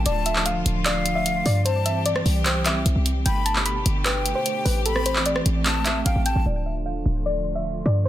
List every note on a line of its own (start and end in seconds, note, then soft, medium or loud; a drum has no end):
0.00 1.62 A3 medium
0.06 0.63 D1 loud
0.06 1.64 D3 medium
0.06 1.64 F3 medium
0.06 1.64 F4 medium
0.06 0.21 D5 medium
0.06 0.43 A5 loud
0.06 closed hi-hat medium
0.26 0.41 E5 medium
0.26 closed hi-hat medium
0.36 clap medium
0.46 0.83 F5 medium
0.46 closed hi-hat medium
0.66 1.42 D1 loud
0.66 closed hi-hat medium
0.86 1.14 D5 loud
0.86 1.62 F5 medium
0.86 clap loud
0.86 closed hi-hat medium
1.06 closed hi-hat medium
1.15 1.44 E5 medium
1.26 closed hi-hat medium
1.46 2.22 G2 loud
1.46 1.61 D5 medium
1.46 open hi-hat medium
1.65 3.24 E3 medium
1.65 3.24 G3 medium
1.65 3.24 C4 medium
1.65 3.24 G4 medium
1.65 1.80 C5 medium
1.65 2.03 A5 loud
1.65 closed hi-hat medium
1.86 2.01 E5 medium
1.86 closed hi-hat medium
2.06 2.43 D5 medium
2.06 closed hi-hat medium
2.16 cross-stick loud
2.26 2.67 C2 loud
2.26 open hi-hat medium
2.46 2.61 C5 medium
2.46 2.83 G5 medium
2.46 clap loud
2.46 closed hi-hat medium
2.66 2.77 B1 loud
2.66 3.22 E5 medium
2.66 clap medium
2.66 closed hi-hat medium
2.76 2.85 C2 loud
2.86 2.95 B1 loud
2.86 closed hi-hat medium
2.96 3.24 C2 loud
3.06 closed hi-hat medium
3.26 3.83 G1 loud
3.26 4.84 B2 medium
3.26 4.84 D3 medium
3.26 4.84 A3 medium
3.26 6.43 G4 medium
3.26 3.41 G5 medium
3.26 3.64 B5 loud
3.26 closed hi-hat medium
3.46 3.61 A5 medium
3.46 closed hi-hat medium
3.56 clap medium
3.66 4.03 B5 medium
3.66 closed hi-hat medium
3.86 4.34 G1 loud
3.86 closed hi-hat medium
4.05 4.34 B4 medium
4.05 4.82 G5 medium
4.05 clap loud
4.05 closed hi-hat medium
4.26 closed hi-hat medium
4.35 4.64 C5 medium
4.46 closed hi-hat medium
4.65 5.42 A1 loud
4.65 4.80 B4 medium
4.65 open hi-hat medium
4.86 6.44 E3 medium
4.86 6.44 A3 medium
4.86 6.44 C4 medium
4.86 5.01 A4 medium
4.86 5.23 B5 loud
4.86 closed hi-hat medium
4.96 cross-stick medium
5.06 5.21 C5 medium
5.06 closed hi-hat medium
5.16 clap medium
5.26 5.82 D5 medium
5.26 closed hi-hat medium
5.36 cross-stick loud
5.46 6.03 A1 loud
5.46 closed hi-hat medium
5.66 6.03 A5 medium
5.66 clap loud
5.66 closed hi-hat medium
5.85 6.00 E5 medium
5.85 clap medium
5.85 closed hi-hat medium
6.05 6.15 A1 loud
6.05 6.21 F5 medium
6.05 6.24 G5 medium
6.05 closed hi-hat medium
6.16 6.35 A1 loud
6.26 6.41 G5 medium
6.26 6.45 A5 medium
6.26 closed hi-hat medium
6.36 6.45 A1 loud
6.46 7.03 D1 loud
6.46 8.04 D3 medium
6.46 8.04 F3 medium
6.46 8.04 A3 medium
6.46 8.04 F4 medium
6.46 6.61 D5 medium
6.66 6.81 E5 medium
6.86 7.23 F5 medium
7.06 7.82 D1 loud
7.26 7.54 D5 medium
7.55 7.84 E5 medium
7.86 8.09 G2 loud
7.86 8.01 D5 medium
8.05 8.09 E3 medium
8.05 8.09 G3 medium
8.05 8.09 C4 medium
8.05 8.09 G4 medium
8.05 8.09 C5 medium